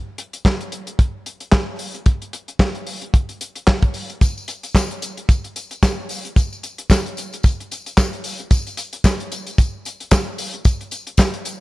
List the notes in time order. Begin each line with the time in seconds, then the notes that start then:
0.18 closed hi-hat
0.33 closed hi-hat
0.45 kick, snare, clap
0.61 closed hi-hat
0.72 closed hi-hat
0.87 closed hi-hat
0.99 kick, closed hi-hat
1.26 closed hi-hat
1.40 closed hi-hat
1.52 kick, snare, clap
1.79 open hi-hat
1.94 closed hi-hat
2.06 kick, closed hi-hat
2.22 closed hi-hat
2.33 closed hi-hat
2.48 closed hi-hat
2.59 kick, snare, clap
2.75 closed hi-hat
2.87 open hi-hat
3.02 closed hi-hat
3.14 kick, closed hi-hat
3.29 closed hi-hat
3.41 closed hi-hat
3.56 closed hi-hat
3.67 kick, snare, clap
3.82 kick, closed hi-hat
3.94 open hi-hat
4.10 closed hi-hat
4.21 kick, closed hi-hat, tambourine
4.38 tambourine
4.48 closed hi-hat, tambourine
4.63 closed hi-hat, tambourine
4.75 kick, snare, clap, tambourine
4.91 closed hi-hat
5.02 closed hi-hat, tambourine
5.17 closed hi-hat
5.29 kick, closed hi-hat, tambourine
5.44 closed hi-hat
5.56 closed hi-hat, tambourine
5.71 closed hi-hat, tambourine
5.83 kick, snare, clap, tambourine
6.09 open hi-hat, tambourine
6.25 closed hi-hat
6.36 kick, closed hi-hat, tambourine
6.53 tambourine
6.63 closed hi-hat, tambourine
6.78 closed hi-hat
6.90 kick, snare, clap, tambourine
7.06 closed hi-hat
7.17 closed hi-hat, tambourine
7.32 closed hi-hat, tambourine
7.43 kick, closed hi-hat, tambourine
7.60 closed hi-hat
7.71 closed hi-hat, tambourine
7.86 closed hi-hat, tambourine
7.97 kick, snare, clap, tambourine
8.13 closed hi-hat
8.24 open hi-hat, tambourine
8.40 closed hi-hat
8.51 kick, closed hi-hat, tambourine
8.67 closed hi-hat, tambourine
8.77 closed hi-hat, tambourine
8.93 closed hi-hat
9.04 kick, snare, clap, tambourine
9.20 closed hi-hat
9.32 closed hi-hat, tambourine
9.47 closed hi-hat, tambourine
9.58 kick, closed hi-hat, tambourine
9.85 closed hi-hat, tambourine
10.00 closed hi-hat
10.11 kick, snare, clap, tambourine
10.38 open hi-hat, tambourine
10.54 closed hi-hat
10.65 kick, closed hi-hat, tambourine
10.81 closed hi-hat
10.91 closed hi-hat, tambourine
11.07 closed hi-hat
11.17 kick, snare, clap, tambourine
11.34 closed hi-hat
11.45 closed hi-hat, tambourine